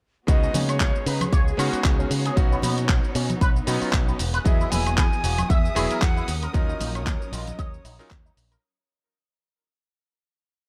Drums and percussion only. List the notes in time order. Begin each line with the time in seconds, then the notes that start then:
0.28 kick, closed hi-hat, shaker
0.43 shaker
0.54 open hi-hat, high conga, low conga, shaker
0.69 closed hi-hat, high woodblock, shaker
0.80 kick, clap, closed hi-hat, shaker
0.95 shaker
1.06 open hi-hat, shaker
1.21 closed hi-hat, low conga, high woodblock, shaker
1.33 kick, closed hi-hat, shaker
1.48 shaker
1.59 open hi-hat, high woodblock, shaker
1.73 closed hi-hat, shaker
1.84 kick, clap, closed hi-hat, shaker
2.00 shaker
2.11 open hi-hat, shaker
2.26 closed hi-hat, shaker
2.37 kick, closed hi-hat, shaker
2.52 shaker
2.62 open hi-hat, high conga, low conga, shaker
2.78 closed hi-hat, shaker
2.89 kick, clap, closed hi-hat, shaker
3.04 shaker
3.15 open hi-hat, shaker
3.30 closed hi-hat, low conga, shaker
3.41 kick, closed hi-hat, shaker
3.56 shaker
3.67 open hi-hat, shaker
3.82 open hi-hat, shaker
3.93 kick, clap, closed hi-hat, shaker
4.08 shaker
4.19 open hi-hat, shaker
4.34 closed hi-hat, shaker
4.45 kick, closed hi-hat, shaker
4.61 shaker
4.72 open hi-hat, high conga, low conga, shaker
4.86 closed hi-hat, high woodblock, shaker
4.97 kick, clap, closed hi-hat, shaker
5.13 shaker
5.24 open hi-hat, shaker
5.38 closed hi-hat, low conga, high woodblock, shaker
5.50 kick, closed hi-hat, shaker
5.65 shaker
5.76 open hi-hat, high woodblock, shaker
5.91 closed hi-hat, shaker
6.02 kick, clap, closed hi-hat, shaker
6.17 shaker
6.28 open hi-hat, shaker
6.43 closed hi-hat, shaker
6.54 kick, closed hi-hat, shaker
6.69 shaker
6.80 open hi-hat, high conga, low conga, shaker
6.95 closed hi-hat, high woodblock, shaker
7.07 kick, clap, closed hi-hat, shaker
7.22 shaker
7.33 open hi-hat, shaker
7.47 closed hi-hat, low conga, shaker
7.59 kick, closed hi-hat, shaker
7.74 shaker
7.85 open hi-hat, shaker
7.99 open hi-hat, shaker
8.11 kick, clap, closed hi-hat, shaker
8.26 shaker
8.37 open hi-hat, shaker
8.52 closed hi-hat, shaker